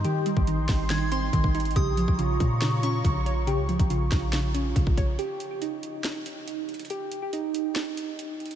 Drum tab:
HH |x---x---x---o---x---x---x---xxxx|x---x---x---x---x---x---x---x---|x---x-x-x---x---x---x---x---x---|x---x---x---x---x---x---x---xxxx|
SD |------------o---o---------------|----------------o---------------|------------o---o---------------|----------------o---------------|
BD |------o-----o-----------o-o-----|o-----o-----o-----------o-------|------o-----o-----------o-o-o---|--------------------------------|

HH |x---x---x---x---x---x---x---xxx-|
SD |----------------o---------------|
BD |--------------------------------|